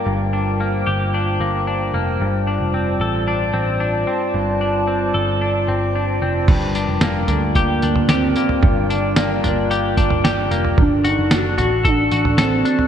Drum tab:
CC |----------------|----------------|----------------|x---------------|
TB |----------------|----------------|----------------|--x-x-x-x-x-x-x-|
SD |----------------|----------------|----------------|----o-------o---|
FT |----------------|----------------|----------------|o-----o----o---o|
BD |----------------|----------------|----------------|o-------o-------|

CC |----------------|----------------|
TB |--x-x-x-x-x-x-x-|--x-x-x-x-x-x-x-|
SD |----o-------o---|----o-------o---|
FT |o-----o----o---o|o-----o----o---o|
BD |o---------o-----|o-------o-------|